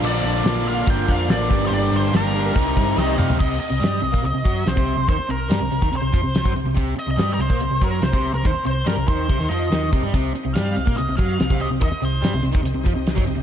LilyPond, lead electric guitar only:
\new Staff \with { instrumentName = "Lead electric guitar" } { \time 4/4 \key c \minor \tempo 4 = 143 d''8 d''4 f''8 g''8 f''8 d''8.~ d''32 c''32 | d''8 c''8 bes'2 ees''8 f''8 | ees''8 ees''4. ees''4 c''4 | c''8 bes'4. c''4. r8 |
r8 ees''16 ees''16~ \tuplet 3/2 { ees''8 bes'16 c''8.~ } c''8 bes'8 c''8. bes'16 | c''8 c''8 bes'8 c''4 ees''4 r8 | r4 f''4 ees''8 f''4 ees''8 | ees''8 c''4 r2 r8 | }